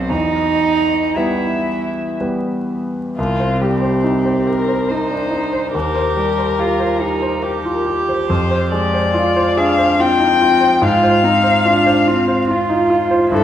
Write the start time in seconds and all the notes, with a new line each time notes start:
Already playing: B1 F#3 B3 C4 B4 C5
0.10 E2 D#4 D#5
1.16 G3 B3 E4 B4 E5
2.20 G3 B3 B4
3.18 C2 C4 F4
3.40 C5
3.61 G3 G4
3.82 C5
4.04 D#4
4.26 C5
4.47 G4 A#4
4.68 C5
4.89 D#4 C5
5.10 D4
5.31 D#4
5.53 C5
5.73 D#2 G4 A#4
5.95 C5
6.17 G3
6.38 C5
6.58 F4 G4
6.79 C5
7.01 D#4 G4
7.22 C5
7.43 G4
7.65 F4
7.86 G4
8.09 C5
8.28 F2 C5
8.51 C5
8.72 G#3 D5
8.94 C5
9.14 F4
9.36 C5
9.57 D4 G#4 F5
9.78 C5
9.99 C4 F4 G5
10.19 D#4
10.41 F4
10.61 C5
10.82 G#2 F4 F5
11.03 C5
11.23 C4 D#4
11.44 C5
11.65 D4 F4
11.86 C5
12.07 C4 F4
12.28 C5
12.48 F4
12.69 D#4
12.90 F4
13.11 C5
13.31 G2 E4 A4